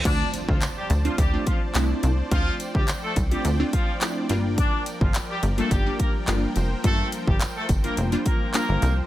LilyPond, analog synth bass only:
\new Staff \with { instrumentName = "Analog synth bass" } { \clef bass \time 4/4 \key d \minor \tempo 4 = 106 d,8 r16 d,8 r16 d,8 d,8 r8 c,8 c,8 | d,8 r16 d,8 r16 c,8 d,8 r4 g,,8~ | g,,8 r16 g,,8 r16 g,,8 g,,8 r8 g,,8 f,,8 | g,,8 r16 g,,8 r16 g,,8 f,,8 r8. g,,16 c,8 | }